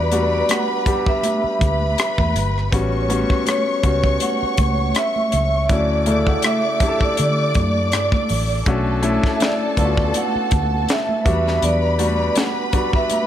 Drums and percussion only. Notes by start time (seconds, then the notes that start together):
0.12 closed hi-hat, high conga
0.49 cross-stick, closed hi-hat, muted conga, high conga
0.69 muted conga
0.86 kick, closed hi-hat, low conga
1.06 kick
1.23 closed hi-hat, muted conga, high conga
1.43 muted conga
1.59 kick, closed hi-hat, high conga
1.80 high conga
1.97 cross-stick, closed hi-hat, muted conga
2.18 kick, high conga
2.35 closed hi-hat, low conga
2.58 cross-stick
2.72 kick, closed hi-hat, low conga
2.92 muted conga
3.08 closed hi-hat, high conga
3.30 kick, cross-stick
3.46 cross-stick, closed hi-hat, muted conga, high conga
3.67 muted conga
3.83 kick, closed hi-hat, low conga
4.04 kick
4.20 closed hi-hat, muted conga, high conga
4.57 kick, closed hi-hat, high conga
4.78 high conga
4.95 cross-stick, closed hi-hat, muted conga
5.16 muted conga, high conga
5.32 closed hi-hat, low conga
5.69 kick, closed hi-hat, muted conga, low conga
6.06 closed hi-hat, high conga
6.27 kick
6.42 cross-stick, closed hi-hat, high conga
6.80 kick, closed hi-hat, low conga
7.01 kick
7.17 closed hi-hat, muted conga, high conga
7.54 kick, closed hi-hat, high conga
7.75 high conga
7.92 cross-stick, closed hi-hat
8.12 kick, muted conga, high conga
8.29 open hi-hat, low conga
8.66 kick, closed hi-hat, muted conga, low conga
8.87 muted conga
9.03 closed hi-hat, high conga
9.24 kick, snare
9.40 snare, closed hi-hat, high conga
9.77 kick, closed hi-hat, low conga
9.97 kick
10.14 closed hi-hat, muted conga, high conga
10.36 muted conga
10.51 kick, closed hi-hat, high conga
10.72 high conga
10.89 snare, closed hi-hat, muted conga
11.09 muted conga, high conga
11.26 kick, closed hi-hat, low conga
11.48 snare
11.62 closed hi-hat, muted conga, low conga
11.99 closed hi-hat, high conga
12.35 snare, closed hi-hat, muted conga, high conga
12.73 kick, closed hi-hat, low conga
12.93 kick
13.10 closed hi-hat, muted conga, high conga